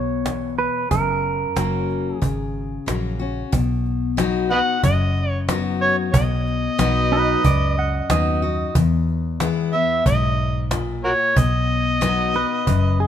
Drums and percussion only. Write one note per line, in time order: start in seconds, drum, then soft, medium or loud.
0.26 cajon slap loud
0.58 cajon slap soft
0.91 cajon bass loud
1.57 cajon slap loud
1.90 cajon slap soft
2.22 cajon bass loud
2.88 cajon slap loud
3.21 cajon slap soft
3.53 cajon bass loud
3.86 cajon slap soft
4.18 cajon slap loud
4.51 cajon slap soft
4.83 cajon bass loud
5.16 cajon slap soft
5.49 cajon slap loud
5.82 cajon slap soft
6.14 cajon bass loud
6.46 cajon slap soft
6.79 cajon slap loud
7.44 cajon bass loud
7.77 cajon slap soft
8.10 cajon slap loud
8.42 cajon slap soft
8.75 cajon bass loud
9.08 cajon slap soft
9.40 cajon slap loud
9.73 cajon slap soft
10.06 cajon bass loud
10.38 cajon slap soft
10.71 cajon slap loud
11.04 cajon slap soft
11.37 cajon bass loud
11.69 cajon slap soft
12.02 cajon slap loud
12.35 cajon slap soft
12.67 cajon bass loud
13.00 cajon slap soft